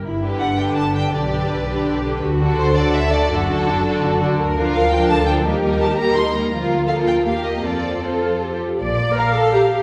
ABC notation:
X:1
M:3/4
L:1/8
Q:1/4=166
K:G
V:1 name="Violin section"
z2 f g a g | d4- d z | z2 c d e d | A4- A z |
[K:Bb] z2 f g a g | z2 a b c' b | z2 f g f e | d2 c3 z |
z2 f4 |]
V:2 name="Violin section"
z [GB]2 [GB]2 [GB] | [GB] [GB]2 [GB]2 [GB] | z [FA]2 [FA]2 [FA] | [FA] [FA]2 [FA]2 [FA] |
[K:Bb] z [FB]2 [FB]2 [FB] | [EB] [EB]2 [EB]2 [EB] | [FB]2 [FB]2 [GB]2 | [FA]2 [FA]3 z |
z2 [fb]2 [fb]2 |]
V:3 name="Cello section"
E2 D4 | G2 B2 G2 | F2 A2 A2 | F2 D2 F2 |
[K:Bb] B2 B2 A2 | G4 E2 | F2 A2 G2 | A4- A z |
B,,2 z4 |]
V:4 name="Viola section"
z [D,D]2 [D,D]2 [D,D] | [D,D] [D,D]2 [D,D]2 [D,D] | z [D,D]2 [D,D]2 [D,D] | [D,D] [D,D]2 [D,D]2 [D,D] |
[K:Bb] z [F,D]2 [F,D]2 [F,D] | [G,B,] [G,B,]2 [G,B,]2 [G,B,] | [F,B,]2 [F,B,]2 B,2 | [F,C]2 [F,C] F G2 |
d2 B A G G |]
V:5 name="Double bass section" clef=bass
G,,,2 G,,,2 G,,,2 | B,,,2 B,,,2 B,,,2 | D,,2 D,,2 D,,2 | F,,,2 F,,,2 F,,,2 |
[K:Bb] D,,2 D,,2 D,,2 | E,,2 E,,2 E,,2 | D,,4 E,,2 | F,,4- F,, z |
B,,,2 z4 |]